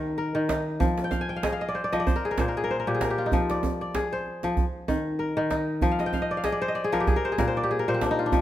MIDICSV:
0, 0, Header, 1, 3, 480
1, 0, Start_track
1, 0, Tempo, 626959
1, 619, Time_signature, 4, 2, 24, 8
1, 6442, End_track
2, 0, Start_track
2, 0, Title_t, "Kora"
2, 0, Program_c, 0, 46
2, 0, Note_on_c, 0, 51, 70
2, 0, Note_on_c, 0, 67, 67
2, 0, Note_on_c, 0, 68, 72
2, 0, Note_on_c, 0, 70, 60
2, 133, Note_off_c, 0, 70, 0
2, 136, Note_on_c, 0, 70, 63
2, 215, Note_off_c, 0, 68, 0
2, 257, Note_off_c, 0, 51, 0
2, 266, Note_on_c, 0, 51, 76
2, 375, Note_on_c, 0, 63, 62
2, 387, Note_off_c, 0, 67, 0
2, 613, Note_on_c, 0, 53, 78
2, 657, Note_off_c, 0, 51, 0
2, 797, Note_on_c, 0, 79, 71
2, 849, Note_on_c, 0, 77, 62
2, 926, Note_on_c, 0, 80, 66
2, 972, Note_off_c, 0, 79, 0
2, 989, Note_on_c, 0, 79, 58
2, 1041, Note_off_c, 0, 77, 0
2, 1044, Note_on_c, 0, 77, 64
2, 1095, Note_on_c, 0, 75, 65
2, 1096, Note_on_c, 0, 68, 70
2, 1110, Note_off_c, 0, 70, 0
2, 1142, Note_off_c, 0, 79, 0
2, 1163, Note_off_c, 0, 77, 0
2, 1166, Note_on_c, 0, 77, 66
2, 1230, Note_off_c, 0, 75, 0
2, 1234, Note_on_c, 0, 75, 66
2, 1290, Note_on_c, 0, 74, 70
2, 1336, Note_off_c, 0, 63, 0
2, 1338, Note_on_c, 0, 72, 62
2, 1406, Note_off_c, 0, 74, 0
2, 1410, Note_on_c, 0, 74, 70
2, 1455, Note_off_c, 0, 75, 0
2, 1468, Note_off_c, 0, 53, 0
2, 1473, Note_on_c, 0, 75, 71
2, 1477, Note_on_c, 0, 53, 76
2, 1526, Note_off_c, 0, 74, 0
2, 1529, Note_on_c, 0, 74, 67
2, 1579, Note_off_c, 0, 72, 0
2, 1582, Note_on_c, 0, 72, 68
2, 1615, Note_off_c, 0, 80, 0
2, 1621, Note_off_c, 0, 53, 0
2, 1651, Note_on_c, 0, 70, 66
2, 1719, Note_off_c, 0, 68, 0
2, 1722, Note_on_c, 0, 68, 63
2, 1765, Note_off_c, 0, 70, 0
2, 1768, Note_on_c, 0, 70, 64
2, 1831, Note_off_c, 0, 72, 0
2, 1831, Note_on_c, 0, 46, 68
2, 1834, Note_on_c, 0, 72, 59
2, 1898, Note_off_c, 0, 70, 0
2, 1901, Note_on_c, 0, 70, 57
2, 1931, Note_off_c, 0, 77, 0
2, 1965, Note_off_c, 0, 68, 0
2, 1968, Note_on_c, 0, 68, 69
2, 2017, Note_off_c, 0, 70, 0
2, 2020, Note_on_c, 0, 70, 63
2, 2068, Note_off_c, 0, 72, 0
2, 2071, Note_on_c, 0, 72, 61
2, 2137, Note_off_c, 0, 70, 0
2, 2141, Note_on_c, 0, 70, 59
2, 2190, Note_off_c, 0, 46, 0
2, 2199, Note_on_c, 0, 46, 71
2, 2202, Note_on_c, 0, 67, 66
2, 2248, Note_off_c, 0, 68, 0
2, 2255, Note_on_c, 0, 68, 61
2, 2293, Note_off_c, 0, 75, 0
2, 2301, Note_off_c, 0, 70, 0
2, 2304, Note_on_c, 0, 70, 66
2, 2373, Note_off_c, 0, 67, 0
2, 2376, Note_on_c, 0, 67, 66
2, 2377, Note_off_c, 0, 74, 0
2, 2422, Note_off_c, 0, 68, 0
2, 2436, Note_on_c, 0, 65, 62
2, 2496, Note_on_c, 0, 63, 59
2, 2550, Note_on_c, 0, 53, 84
2, 2583, Note_off_c, 0, 46, 0
2, 2683, Note_on_c, 0, 74, 68
2, 2729, Note_off_c, 0, 63, 0
2, 2915, Note_off_c, 0, 74, 0
2, 2918, Note_on_c, 0, 74, 64
2, 2980, Note_off_c, 0, 72, 0
2, 3023, Note_on_c, 0, 68, 78
2, 3069, Note_off_c, 0, 67, 0
2, 3158, Note_on_c, 0, 72, 65
2, 3278, Note_off_c, 0, 70, 0
2, 3388, Note_off_c, 0, 53, 0
2, 3398, Note_on_c, 0, 53, 75
2, 3543, Note_off_c, 0, 53, 0
2, 3595, Note_off_c, 0, 65, 0
2, 3738, Note_on_c, 0, 51, 69
2, 3783, Note_off_c, 0, 74, 0
2, 3974, Note_on_c, 0, 70, 63
2, 4067, Note_off_c, 0, 68, 0
2, 4068, Note_off_c, 0, 72, 0
2, 4100, Note_off_c, 0, 51, 0
2, 4109, Note_on_c, 0, 51, 77
2, 4216, Note_on_c, 0, 63, 66
2, 4457, Note_on_c, 0, 53, 89
2, 4502, Note_off_c, 0, 51, 0
2, 4527, Note_on_c, 0, 77, 70
2, 4590, Note_on_c, 0, 75, 67
2, 4641, Note_on_c, 0, 79, 75
2, 4694, Note_off_c, 0, 77, 0
2, 4697, Note_on_c, 0, 77, 65
2, 4758, Note_off_c, 0, 75, 0
2, 4761, Note_on_c, 0, 75, 67
2, 4830, Note_on_c, 0, 74, 64
2, 4875, Note_off_c, 0, 77, 0
2, 4876, Note_off_c, 0, 63, 0
2, 4878, Note_on_c, 0, 77, 61
2, 4931, Note_off_c, 0, 75, 0
2, 4932, Note_on_c, 0, 68, 73
2, 4934, Note_on_c, 0, 75, 66
2, 4948, Note_off_c, 0, 70, 0
2, 4978, Note_off_c, 0, 79, 0
2, 4980, Note_off_c, 0, 74, 0
2, 4994, Note_on_c, 0, 74, 71
2, 5065, Note_on_c, 0, 72, 80
2, 5113, Note_off_c, 0, 75, 0
2, 5116, Note_on_c, 0, 75, 72
2, 5162, Note_off_c, 0, 74, 0
2, 5167, Note_on_c, 0, 74, 72
2, 5236, Note_off_c, 0, 68, 0
2, 5239, Note_on_c, 0, 68, 76
2, 5293, Note_off_c, 0, 53, 0
2, 5301, Note_on_c, 0, 53, 86
2, 5305, Note_on_c, 0, 70, 74
2, 5361, Note_on_c, 0, 67, 70
2, 5407, Note_off_c, 0, 68, 0
2, 5417, Note_on_c, 0, 68, 75
2, 5460, Note_off_c, 0, 53, 0
2, 5480, Note_off_c, 0, 70, 0
2, 5483, Note_on_c, 0, 70, 68
2, 5546, Note_off_c, 0, 72, 0
2, 5549, Note_on_c, 0, 72, 76
2, 5601, Note_off_c, 0, 68, 0
2, 5604, Note_on_c, 0, 68, 69
2, 5642, Note_off_c, 0, 77, 0
2, 5650, Note_off_c, 0, 67, 0
2, 5651, Note_off_c, 0, 70, 0
2, 5654, Note_on_c, 0, 70, 60
2, 5655, Note_on_c, 0, 46, 74
2, 5721, Note_off_c, 0, 72, 0
2, 5724, Note_on_c, 0, 72, 59
2, 5792, Note_off_c, 0, 74, 0
2, 5795, Note_on_c, 0, 74, 68
2, 5841, Note_off_c, 0, 75, 0
2, 5845, Note_on_c, 0, 67, 72
2, 5891, Note_off_c, 0, 68, 0
2, 5900, Note_on_c, 0, 68, 65
2, 5962, Note_off_c, 0, 70, 0
2, 5965, Note_on_c, 0, 70, 64
2, 6025, Note_off_c, 0, 46, 0
2, 6033, Note_off_c, 0, 72, 0
2, 6033, Note_on_c, 0, 46, 82
2, 6036, Note_on_c, 0, 72, 75
2, 6081, Note_on_c, 0, 60, 68
2, 6140, Note_on_c, 0, 62, 69
2, 6207, Note_on_c, 0, 63, 70
2, 6253, Note_off_c, 0, 74, 0
2, 6269, Note_on_c, 0, 65, 74
2, 6320, Note_off_c, 0, 62, 0
2, 6323, Note_on_c, 0, 62, 69
2, 6369, Note_off_c, 0, 63, 0
2, 6374, Note_on_c, 0, 53, 81
2, 6417, Note_off_c, 0, 46, 0
2, 6442, Note_off_c, 0, 53, 0
2, 6442, Note_off_c, 0, 60, 0
2, 6442, Note_off_c, 0, 62, 0
2, 6442, Note_off_c, 0, 65, 0
2, 6442, Note_off_c, 0, 67, 0
2, 6442, Note_off_c, 0, 68, 0
2, 6442, Note_off_c, 0, 70, 0
2, 6442, Note_off_c, 0, 72, 0
2, 6442, End_track
3, 0, Start_track
3, 0, Title_t, "Djembe"
3, 376, Note_on_c, 9, 62, 70
3, 453, Note_off_c, 9, 62, 0
3, 617, Note_on_c, 9, 64, 69
3, 693, Note_off_c, 9, 64, 0
3, 747, Note_on_c, 9, 62, 57
3, 824, Note_off_c, 9, 62, 0
3, 854, Note_on_c, 9, 62, 22
3, 854, Note_on_c, 9, 63, 74
3, 930, Note_off_c, 9, 62, 0
3, 930, Note_off_c, 9, 63, 0
3, 1097, Note_on_c, 9, 62, 78
3, 1174, Note_off_c, 9, 62, 0
3, 1236, Note_on_c, 9, 62, 22
3, 1313, Note_off_c, 9, 62, 0
3, 1477, Note_on_c, 9, 62, 50
3, 1553, Note_off_c, 9, 62, 0
3, 1585, Note_on_c, 9, 64, 70
3, 1661, Note_off_c, 9, 64, 0
3, 1819, Note_on_c, 9, 62, 70
3, 1819, Note_on_c, 9, 63, 66
3, 1896, Note_off_c, 9, 62, 0
3, 1896, Note_off_c, 9, 63, 0
3, 1959, Note_on_c, 9, 62, 21
3, 2036, Note_off_c, 9, 62, 0
3, 2304, Note_on_c, 9, 62, 69
3, 2381, Note_off_c, 9, 62, 0
3, 2540, Note_on_c, 9, 64, 67
3, 2616, Note_off_c, 9, 64, 0
3, 2677, Note_on_c, 9, 62, 59
3, 2754, Note_off_c, 9, 62, 0
3, 2779, Note_on_c, 9, 63, 79
3, 2855, Note_off_c, 9, 63, 0
3, 3021, Note_on_c, 9, 62, 75
3, 3097, Note_off_c, 9, 62, 0
3, 3155, Note_on_c, 9, 62, 21
3, 3231, Note_off_c, 9, 62, 0
3, 3261, Note_on_c, 9, 62, 21
3, 3338, Note_off_c, 9, 62, 0
3, 3393, Note_on_c, 9, 62, 51
3, 3470, Note_off_c, 9, 62, 0
3, 3497, Note_on_c, 9, 62, 21
3, 3497, Note_on_c, 9, 64, 65
3, 3574, Note_off_c, 9, 62, 0
3, 3574, Note_off_c, 9, 64, 0
3, 3739, Note_on_c, 9, 63, 69
3, 3815, Note_off_c, 9, 63, 0
3, 4215, Note_on_c, 9, 62, 62
3, 4291, Note_off_c, 9, 62, 0
3, 4452, Note_on_c, 9, 64, 62
3, 4528, Note_off_c, 9, 64, 0
3, 4585, Note_on_c, 9, 62, 50
3, 4662, Note_off_c, 9, 62, 0
3, 4690, Note_on_c, 9, 63, 62
3, 4766, Note_off_c, 9, 63, 0
3, 4928, Note_on_c, 9, 62, 64
3, 5005, Note_off_c, 9, 62, 0
3, 5069, Note_on_c, 9, 62, 20
3, 5145, Note_off_c, 9, 62, 0
3, 5180, Note_on_c, 9, 62, 22
3, 5256, Note_off_c, 9, 62, 0
3, 5309, Note_on_c, 9, 62, 53
3, 5385, Note_off_c, 9, 62, 0
3, 5414, Note_on_c, 9, 62, 23
3, 5414, Note_on_c, 9, 64, 68
3, 5491, Note_off_c, 9, 62, 0
3, 5491, Note_off_c, 9, 64, 0
3, 5653, Note_on_c, 9, 62, 70
3, 5653, Note_on_c, 9, 63, 69
3, 5729, Note_off_c, 9, 62, 0
3, 5729, Note_off_c, 9, 63, 0
3, 6135, Note_on_c, 9, 62, 76
3, 6212, Note_off_c, 9, 62, 0
3, 6370, Note_on_c, 9, 64, 69
3, 6442, Note_off_c, 9, 64, 0
3, 6442, End_track
0, 0, End_of_file